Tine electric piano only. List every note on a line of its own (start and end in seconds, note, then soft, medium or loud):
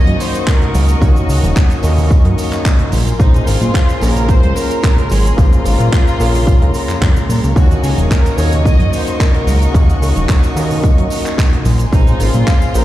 0.00 0.99 A#3 medium
0.00 0.99 C#4 medium
0.00 0.99 D#4 medium
0.00 0.99 F#4 medium
0.00 1.00 D#5 loud
1.01 1.80 A#3 medium
1.01 1.80 C#4 medium
1.01 1.81 D#4 medium
1.01 1.81 F#4 medium
1.01 1.81 C#5 loud
1.83 2.91 A#3 medium
1.83 2.91 C#4 medium
1.83 2.91 D#4 medium
1.83 2.91 F#4 medium
1.83 2.92 D#5 loud
3.19 3.98 A#3 medium
3.19 3.99 C#4 medium
3.19 3.99 F4 medium
3.19 3.99 G#4 medium
3.19 3.99 C5 loud
4.01 5.35 A#3 medium
4.01 5.35 C#4 medium
4.01 5.35 F4 medium
4.01 5.35 G#4 medium
4.01 5.35 C#5 loud
5.37 6.16 A#3 medium
5.37 6.17 C#4 medium
5.37 6.17 F4 medium
5.37 6.17 G#4 medium
5.37 6.17 C5 loud
6.19 7.53 A#3 medium
6.19 7.53 C#4 medium
6.19 7.54 F4 medium
6.19 7.54 G#4 medium
6.19 7.54 C#5 loud
7.56 8.35 A#3 medium
7.56 8.35 C#4 medium
7.56 8.35 D#4 medium
7.56 8.36 F#4 medium
7.56 8.36 C#5 loud
8.37 9.71 A#3 medium
8.37 9.71 C#4 medium
8.37 9.72 D#4 medium
8.37 9.72 F#4 medium
8.37 9.72 D#5 loud
9.73 10.53 A#3 medium
9.73 10.53 C#4 medium
9.73 10.53 D#4 medium
9.73 10.54 F#4 medium
9.73 10.54 C#5 loud
10.55 11.64 A#3 medium
10.55 11.64 C#4 medium
10.55 11.64 D#4 medium
10.55 11.64 F#4 medium
10.55 11.65 D#5 loud
11.92 12.71 A#3 medium
11.92 12.71 C#4 medium
11.92 12.72 F4 medium
11.92 12.72 G#4 medium
11.92 12.72 C5 loud
12.74 12.85 A#3 medium
12.74 12.85 C#4 medium
12.74 12.85 F4 medium
12.74 12.85 G#4 medium
12.74 12.85 C5 loud